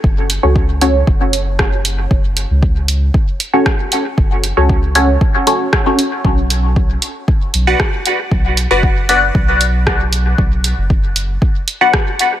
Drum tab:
HH |-x-x-x-x|-x-x-x-x|-x-x-x-x|-x-x-x-x|
SD |------r-|------r-|------r-|------r-|
BD |o-o-o-o-|o-o-o-o-|o-o-o-o-|o-o-o-o-|

HH |-x-x-x-x|-x-x-x-x|
SD |------r-|------r-|
BD |o-o-o-o-|o-o-o-o-|